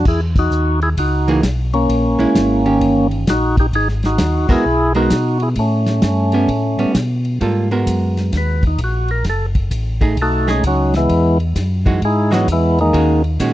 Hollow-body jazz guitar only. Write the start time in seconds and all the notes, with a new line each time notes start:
1.28 E3 A#3 D#4 G#4
2.19 G#3 C#4 E4
2.65 D#3 C#4 G4
4.49 G#3 B3 F#4 A#4
4.95 G#3 B3 F#4 A#4
6.33 G3 B3 C#4
6.79 G3 B3 C#4
7.41 G3 A#3 F4 A4
7.71 G#3 B3 F#4 A#4
10.01 A3 D#4 G#4
10.47 A3 D#4 G#4
11.86 E3 G#3 D#4 F#4
12.31 E3 G#3 D#4 F#4
12.93 D#3 G#3 C#4 F#4
13.40 D#3 G#3 C#4 F#4